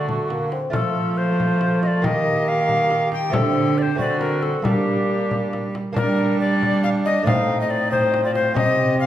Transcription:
Already playing: D3 A3 F#4
0.08 A3, frame drum
0.30 A#3, frame drum
0.52 C4, frame drum
0.70 F3 A3 F4, frame drum
0.74 F3 A4
1.17 C5
1.40 frame drum
1.61 frame drum
1.83 D#5, frame drum
1.87 D5
2.02 D#3 A#3 G4 D#5, frame drum
2.48 F5
2.69 frame drum
2.90 frame drum
3.12 G5, frame drum
3.30 D3 A3 C4 G4 A4, frame drum
3.34 D3
3.78 D5
3.82 C5
3.95 D3 A3 C4 F#4, frame drum
4.00 D5
4.20 A#4, frame drum
4.42 A4, frame drum
4.62 G3 A#3 D4 G4, frame drum
5.31 frame drum
5.53 frame drum
5.75 frame drum
5.93 G3 A#3 D4 A#4, frame drum
5.97 G3 D4
6.40 D5
6.62 frame drum
6.83 F5, frame drum
7.05 D#5, frame drum
7.23 A2 A3 C4 D#4 F5
7.27 A2 C4, frame drum
7.61 D#5
7.70 D5
7.91 C4 D#4 C5, frame drum
8.14 frame drum
8.24 F4 D5
8.35 C5, frame drum
8.54 C3 C4 D#4 G4 D#5, frame drum
9.00 F5

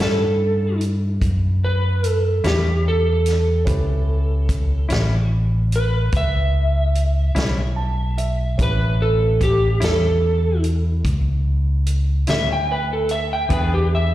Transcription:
Already playing: C#4 E4 G4 B4
0.00 G2 A2 G3 C#4 E4 A4, snare
0.81 closed hi-hat
1.21 F#2, kick, closed hi-hat
1.65 B4
2.04 A4, closed hi-hat
2.44 E2 A2 G3 C#4 E4 G4, snare, closed hi-hat
2.88 A4
3.26 snare, closed hi-hat
3.65 C#2 C#4 E4 G4 B4, kick, closed hi-hat
4.49 kick, closed hi-hat
4.89 A1 A2 G3 C#4 E4, snare, closed hi-hat
5.72 B4, closed hi-hat
6.12 C#2, kick, closed hi-hat
6.17 E5
6.95 closed hi-hat
7.35 B1 A2 G3 C#4 E4, snare, closed hi-hat
7.76 A5
8.18 E5, closed hi-hat
8.58 A1 C#4 E4 G4 B4, kick, closed hi-hat
8.63 B4
9.02 A4
9.41 G4, kick, closed hi-hat
9.80 E2 A2 G3 C#4 E4 A4, snare, closed hi-hat
10.64 closed hi-hat
11.04 C#2, kick, closed hi-hat
11.86 closed hi-hat
12.27 D2 A2 G3 C#4 E4 E5, snare, closed hi-hat
12.53 G5
12.71 B4
12.93 A4
13.09 E5, closed hi-hat
13.33 G5
13.49 E2 E3 B3 D4 E4 G#4 B4, kick, closed hi-hat
13.53 B4
13.74 G4
13.95 E5

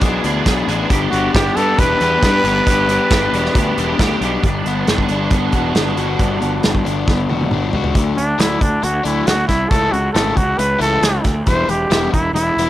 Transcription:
0.01 B1 E3 B3 D4 G#4, kick, closed hi-hat
0.23 D2 E3 B3 D4 G#4, closed hi-hat
0.44 B1 E3 B3 D4 G#4, kick, snare, closed hi-hat
0.68 A1 E3 B3 D4 G#4, closed hi-hat
0.88 G1 G3 B3 D4 G4, kick, closed hi-hat
1.10 G1 G3 B3 D4 F#4 G4, closed hi-hat
1.33 G1 G3 B3 D4 G4, kick, snare, closed hi-hat
1.56 G2 G3 B3 D4 G4 A4, closed hi-hat
1.78 E1 G3 B3 D4 G4 B4, kick, closed hi-hat
2.01 E2 G3 B3 D4 G4, closed hi-hat
2.22 G2 G3 B3 D4 G4, kick, snare, closed hi-hat
2.44 G1 G3 B3 D4 G4, closed hi-hat
2.67 G1 G3 B3 D4 G4, kick, closed hi-hat
2.88 G3 B3 D4 G4, closed hi-hat
3.10 G1 G3 B3 D4 G4, kick, snare, closed hi-hat
3.33 E1 G3 B3 D4 G4, closed hi-hat
3.46 snare
3.55 D2 G3 B3 D4 G4, kick, closed hi-hat
3.78 E1 G3 B3 D4 G4, closed hi-hat
3.99 D2 G3 B3 D4 G4, kick, snare, closed hi-hat
4.21 B1 G3 B3 D4 G4, closed hi-hat
4.43 G1 G3 B3 D4, kick, closed hi-hat
4.65 G1 B3, closed hi-hat
4.87 G1 G3, snare, closed hi-hat
4.98 kick
5.09 G1 D4, closed hi-hat
5.31 G1 B3, kick, closed hi-hat
5.52 E1 F#4, kick, closed hi-hat
5.75 G1 D4, snare, closed hi-hat
5.97 G1 F#4, closed hi-hat
6.19 G1 G3, kick, closed hi-hat
6.41 G1 B3, closed hi-hat
6.63 G1 G3, snare, closed hi-hat
6.75 kick
6.85 G1 D4, closed hi-hat
7.08 G1 B3, kick, snare
7.29 E1 F#4, high tom
7.41 high tom
7.51 G1 D4, mid tom
7.73 C#2 F#4, floor tom
7.84 floor tom
7.95 D2 D3 F#3 A3 D4, kick, closed hi-hat
8.17 D2 D4, muted overdriven electric guitar stroke, closed hi-hat
8.38 D2 D3 F#3 A3 D4 E4, snare, closed hi-hat
8.61 D2 D4, muted overdriven electric guitar stroke, kick, closed hi-hat
8.82 D2 F#4, muted overdriven electric guitar stroke, closed hi-hat
9.04 D2 D3 F#3 A3 D4 E4, closed hi-hat
9.27 D2 F#4, muted overdriven electric guitar stroke, snare, closed hi-hat
9.47 C2 E4, muted overdriven electric guitar stroke, kick, snare, closed hi-hat
9.69 C#2 C#3 E3 A3 E4 A4, kick, closed hi-hat
9.92 C#2 F#4, muted overdriven electric guitar stroke, closed hi-hat
10.13 G#1 C#3 E3 A3 E4 A4, snare, closed hi-hat
10.37 C#2 F#4, muted overdriven electric guitar stroke, kick, closed hi-hat
10.58 C#2 B4, muted overdriven electric guitar stroke, closed hi-hat
10.79 C#2 C#3 E3 A3 E4 A4, closed hi-hat
11.02 C#2, muted overdriven electric guitar stroke, snare, closed hi-hat
11.24 D2, muted overdriven electric guitar stroke, kick, snare, closed hi-hat
11.46 E1 E3 G3 B3 E4 C5, kick, closed hi-hat
11.68 E1 G4, muted overdriven electric guitar stroke, closed hi-hat
11.90 E1 E3 G3 B3 E4, snare, closed hi-hat
12.13 E1 E4, muted overdriven electric guitar stroke, kick, closed hi-hat
12.33 E1 E4, muted overdriven electric guitar stroke, closed hi-hat
12.57 E1 E3 G3 B3 E4, closed hi-hat

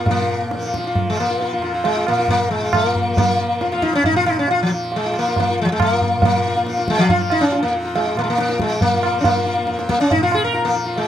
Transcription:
Already playing: F2 F3
0.00 A#2 F4
0.06 tabla tin, tabla ge
0.11 A#3
0.22 F4
0.51 tabla te
0.56 F3
0.63 F4, tabla te
0.74 F4, tabla ke
0.84 F4, tabla te
0.95 tabla tin, tabla ge
1.07 F3 G#3
1.17 A#3, tabla na
1.30 F4
1.40 F4, tabla tin
1.53 F4
1.58 F2, tabla na
1.64 F4
1.74 F4
1.84 G#3, tabla tin
1.96 F4
2.07 A#2 A#3, tabla na
2.19 F4
2.28 A#3, tabla tin, tabla ge
2.51 G#3
2.59 F3 F4
2.73 A#3, tabla na, tabla ge
2.86 F4
2.95 F4, tabla ge
3.10 F3
3.17 A#3, tabla tin, tabla ge
3.28 F4
3.40 F4
3.60 F2 F4, tabla te
3.72 F4, tabla te
3.82 D#4, tabla ke
3.93 C#4, tabla te
4.04 D#4, tabla tin, tabla ge
4.11 A#2
4.16 F4
4.26 D#4, tabla na
4.39 C#4
4.48 F4, tabla tin
4.62 F3
4.74 F4
4.92 tabla tin
4.96 G#3
5.05 F4
5.12 F3, tabla na
5.19 A#3
5.28 F4
5.36 A#3, tabla tin, tabla ge
5.50 F4
5.62 F2 F3 G#3
5.72 G#3
5.80 A#3, tabla na, tabla ge
5.93 F4
6.01 F4, tabla ge
6.14 A#2
6.22 A#3, tabla tin, tabla ge
6.37 F4
6.47 F4
6.57 F4
6.63 F3, tabla te
6.69 F4
6.77 F4, tabla te
6.88 G#3, tabla ke
6.98 F3, tabla te
7.09 F3 F4, tabla tin, tabla ge
7.21 F4
7.30 D#4, tabla na
7.41 C#4
7.52 F4, tabla tin
7.63 F2 A#3
7.75 F4
7.85 F4
7.95 G#3, tabla tin
8.07 F4
8.15 A#2 A#3, tabla na
8.24 G#3
8.30 A#3
8.38 A#3, tabla te
8.49 F4, tabla te
8.60 G#3, tabla ke
8.64 F3
8.70 tabla te
8.81 A#3, tabla tin, tabla ge
8.94 F4
9.03 F4, tabla na
9.14 F3
9.21 C#4, tabla tin, tabla ge
9.25 A#3
9.37 F4
9.46 F4
9.58 F4
9.64 F2 F4, tabla te
9.79 tabla te
9.89 A#3, tabla ke
10.00 C#4, tabla te
10.11 A#2 D#4, tabla tin, tabla ge
10.23 F4
10.32 G#4, tabla na
10.44 A#4
10.53 F4, tabla tin
10.64 F3 A#3
10.75 F4
10.86 F4
10.96 G#3, tabla tin

